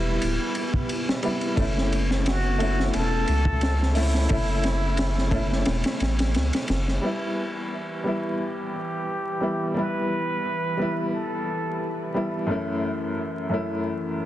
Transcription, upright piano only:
0.00 1.23 G3 medium
0.00 1.24 B3 medium
0.00 1.25 E4 medium
1.23 1.53 G3 medium
1.23 1.54 B3 medium
1.23 1.55 E4 medium
1.56 2.55 A3 medium
1.56 2.56 C#4 medium
1.60 2.57 E4 medium
2.58 3.92 A3 medium
2.58 3.93 C#4 medium
2.63 3.94 E4 medium
3.95 4.26 A3 medium
3.95 4.26 C#4 medium
3.95 4.27 E4 medium
4.28 5.28 A3 medium
4.28 5.29 C#4 medium
4.33 5.30 E4 medium
5.31 6.64 A3 medium
5.31 6.65 C#4 medium
5.35 6.66 E4 medium
7.01 8.01 G3 medium
7.01 8.02 B3 medium
7.06 8.03 E4 medium
8.04 9.37 G3 medium
8.04 9.38 B3 medium
8.08 9.39 E4 medium
9.41 9.71 G3 medium
9.41 9.72 B3 medium
9.41 9.73 E4 medium
9.74 10.73 G3 medium
9.74 10.74 B3 medium
9.79 10.76 E4 medium
10.77 12.10 G3 medium
10.77 12.11 B3 medium
10.81 12.12 E4 medium
12.14 12.45 G3 medium
12.14 12.45 B3 medium
12.14 12.46 E4 medium
12.47 13.46 F#2 medium
12.47 13.47 A3 medium
12.47 13.47 C#4 medium
12.51 13.48 E4 medium
13.49 14.26 F#2 medium
13.49 14.26 A3 medium
13.49 14.26 C#4 medium
13.53 14.26 E4 medium

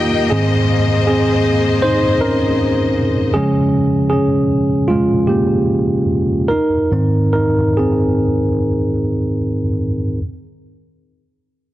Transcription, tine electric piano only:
0.00 0.33 A#3 soft
0.00 0.33 D#4 medium
0.00 0.33 F4 medium
0.00 0.33 G4 medium
0.00 0.33 A#4 medium
0.30 3.31 G#2 soft
0.30 3.31 D#3 soft
0.30 1.04 C4 medium
0.30 1.06 G#4 medium
1.07 1.80 C4 soft
1.07 1.85 G#4 medium
1.82 2.01 D#4 medium
1.82 2.00 C5 medium
2.21 2.94 C#4 soft
2.21 2.93 A#4 medium
3.34 4.46 C#3 soft
3.34 4.46 F3 soft
3.34 4.46 G#3 soft
3.34 4.08 C#4 medium
3.34 4.08 G#4 medium
4.10 4.85 C#4 medium
4.10 4.90 G#4 medium
4.88 5.08 G#3 soft
4.88 5.06 F4 medium
5.27 6.05 A#3 soft
5.27 6.04 G4 medium
6.48 7.31 D#4 medium
6.48 7.30 A#4 medium
6.91 8.20 G#2 soft
6.91 8.20 D#3 soft
6.91 7.78 C4 soft
7.33 7.55 D#4 soft
7.33 7.53 A#4 medium
7.77 9.64 C4 soft
7.77 9.63 G#4 medium

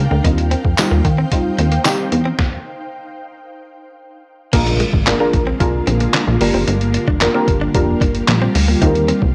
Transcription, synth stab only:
0.24 0.54 G3 medium
0.24 0.55 C4 medium
0.24 0.55 D#4 medium
0.24 0.55 F4 loud
0.78 1.08 G3 medium
0.78 1.08 C4 medium
0.78 1.08 D#4 medium
0.78 1.08 F4 loud
1.32 1.62 G3 medium
1.32 1.62 C4 medium
1.32 1.62 D#4 medium
1.32 1.62 F4 loud
1.85 2.15 G3 medium
1.85 2.15 C4 medium
1.85 2.15 D#4 medium
1.85 2.15 G4 loud
4.53 4.83 A#3 loud
4.53 4.83 D4 medium
4.53 4.83 F4 medium
4.53 4.83 G#4 medium
4.53 4.83 A#4 loud
5.06 5.14 A#3 medium
5.06 5.14 D4 medium
5.06 5.14 F4 medium
5.06 5.14 G#4 medium
5.06 5.14 A#4 loud
5.20 5.42 A#3 loud
5.20 5.43 D4 medium
5.20 5.43 F4 medium
5.20 5.43 G#4 medium
5.20 5.43 A#4 loud
5.60 6.20 A#3 loud
5.60 6.20 D4 medium
5.60 6.20 F4 medium
5.60 6.20 G#4 medium
5.60 6.20 A#4 loud
6.40 7.05 A#3 medium
6.40 7.05 D4 medium
6.40 7.05 F4 medium
6.40 7.05 G4 medium
6.40 7.05 A#4 loud
7.21 7.28 A#3 medium
7.21 7.28 D4 medium
7.21 7.29 F4 medium
7.21 7.29 G4 medium
7.21 7.29 A#4 loud
7.34 7.57 A#3 medium
7.34 7.57 D4 medium
7.34 7.57 F4 medium
7.34 7.57 G4 medium
7.34 7.57 A#4 loud
7.74 8.35 A#3 loud
7.74 8.35 D4 medium
7.74 8.35 F4 medium
7.74 8.35 G4 medium
7.74 8.35 A#4 loud
8.82 9.12 C4 loud
8.82 9.12 D#4 medium
8.82 9.12 F4 medium
8.82 9.12 G4 loud
8.82 9.12 A#4 loud

